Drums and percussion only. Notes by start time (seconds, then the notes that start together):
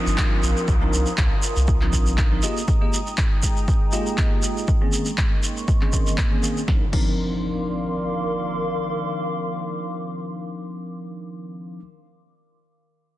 0.07 shekere
0.18 kick, clap, shekere
0.43 shekere
0.57 shekere
0.68 kick, shekere
0.93 shekere
1.06 shekere
1.18 kick, clap, shekere
1.43 shekere
1.56 shekere
1.67 kick, shekere
1.81 clap
1.93 kick, shekere
2.06 shekere
2.18 kick, clap, shekere
2.43 shekere
2.57 shekere
2.68 kick, shekere
2.93 shekere
3.07 shekere
3.17 kick, clap, shekere
3.43 kick, shekere
3.57 shekere
3.68 kick, shekere
3.92 shekere
4.06 shekere
4.18 kick, clap, shekere
4.43 shekere
4.57 shekere
4.67 kick, shekere
4.92 shekere
5.05 shekere
5.18 kick, clap, shekere
5.43 shekere
5.57 shekere
5.68 kick, shekere
5.81 clap
5.93 kick, shekere
6.07 shekere
6.18 kick, clap, shekere
6.43 shekere
6.57 shekere
6.68 kick, snare
6.93 kick, crash